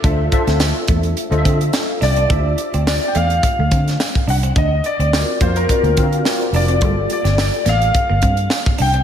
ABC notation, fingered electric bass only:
X:1
M:4/4
L:1/16
Q:"Swing 16ths" 1/4=106
K:Cmix
V:1 name="Fingered electric bass" clef=bass
D,,2 z D,,2 z E,,2 z D,, D,2 z2 C,,2 | [K:Dm] D,,2 z D,,2 z E,,2 z D,, D,2 z2 C,,2 | D,,2 z D,,2 z ^E,,2 z D,, D,2 z2 ^E,,,2 | G,,,2 z G,,,2 z A,,,2 z G,,, G,,2 z2 C,,2 |]